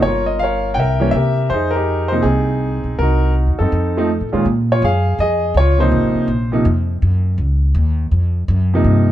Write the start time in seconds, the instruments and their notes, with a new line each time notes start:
0.02 upright bass G1, grand piano C#5
0.06 grand piano F4 A#4
0.26 grand piano D#5
0.39 grand piano A#4 F5
0.44 grand piano C#5
0.74 upright bass C2, grand piano F#5 G5
0.79 grand piano A#4 E5
1.00 grand piano E3 G3 A#3 C#4
1.11 upright bass C3, grand piano E5
1.16 grand piano G4 A#4
1.50 upright bass F2, grand piano C5
1.54 grand piano D#4 G#4
1.71 grand piano A#4
1.76 grand piano D#4 G4
2.08 grand piano C3 F3 C5
2.12 grand piano A#3 D#4
2.22 upright bass C2, grand piano C4 G#4
2.27 grand piano D#4
2.84 upright bass B1
2.98 upright bass C2, grand piano F#4 A#4
3.03 grand piano D#4
3.47 upright bass D#2
3.59 upright bass F#2, grand piano C4 D#4 A4
3.72 upright bass F2
3.97 grand piano F3 A3 C4 D#4
4.21 upright bass A2
4.32 upright bass F2, grand piano A#2 D#3 G#3 C#4 F4
4.45 upright bass A#2
4.72 grand piano F4 C#5
4.82 upright bass F#2, grand piano G#4 F5
5.18 upright bass F2, grand piano G#4 D#5
5.54 upright bass C#2, grand piano C#5
5.60 grand piano F4
5.78 grand piano C3 F3 A#3 D#4 C5
5.92 upright bass G#1
6.15 muted upright bass stroke
6.28 upright bass A#1
6.52 grand piano C3 F3 A#3 D#4
6.65 upright bass F2
7.02 upright bass F#2
7.38 upright bass C#2
7.75 upright bass D#2
8.11 upright bass F2
8.48 upright bass F#2
8.74 grand piano C3 F3 A#3 D#4
8.84 upright bass G2